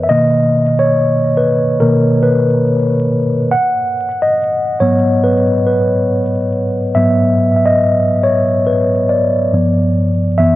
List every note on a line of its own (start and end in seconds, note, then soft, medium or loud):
0.00 0.11 A#4 medium
0.00 0.12 B4 medium
0.00 0.11 E5 medium
0.09 0.71 B2 medium
0.09 0.71 D#3 medium
0.09 0.72 A#3 medium
0.09 0.82 D#5 loud
0.79 1.39 C#5 loud
1.37 1.78 B4 medium
1.80 2.20 B2 soft
1.80 2.20 D#3 soft
1.80 2.20 A#3 medium
1.80 2.25 A#4 medium
2.23 3.05 B4 medium
3.51 4.24 F#5 loud
4.22 4.82 D#5 loud
4.80 6.94 G#2 medium
4.80 6.95 F#3 medium
4.80 6.95 B3 medium
4.80 5.20 C#5 medium
5.24 5.43 B4 medium
5.66 6.48 B4 medium
6.95 7.57 G#2 medium
6.95 7.57 F#3 medium
6.95 7.58 B3 medium
6.95 7.52 E5 loud
7.56 7.65 E5 medium
7.66 8.20 D#5 loud
8.24 8.43 C#5 medium
8.67 9.11 B4 medium
9.09 9.91 D5 medium
9.53 10.34 G2 medium
9.53 10.34 F3 soft
9.53 10.35 B3 medium
10.38 10.56 F#2 medium
10.38 10.56 E3 medium
10.38 10.56 B3 medium
10.38 10.56 E5 loud